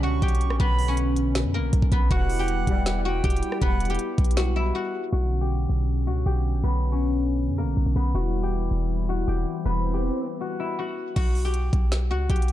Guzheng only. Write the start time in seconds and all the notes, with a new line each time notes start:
Already playing: B3 E4 E5
0.03 F#4 F#5
0.22 G4 G5
0.60 B3 B4
0.88 C#4 C#5
1.54 A#3 A#4
1.92 B3 B4
2.11 F#4 F#5
2.39 G4 G5
3.05 F#4 F#5
3.24 G4 G5
3.62 B3 B4
3.90 G4 G5
4.37 F#4 F#5
4.56 E4 E5
4.75 F#4 F#5
5.12 F#4 F#5
5.41 G4 G5
6.07 F#4 F#5
6.26 G4 G5
6.63 B3 B4
6.92 C#4 C#5
7.58 A#3 A#4
7.96 B3 B4
8.15 F#4 F#5
8.43 G4 G5
9.09 F#4 F#5
9.28 G4 G5
9.65 B3 B4
9.94 G4 G5
10.41 F#4 F#5
10.60 E4 E5
10.79 F#4 F#5
11.16 F#4 F#5
11.45 G4 G5
12.11 F#4 F#5
12.30 G4 G5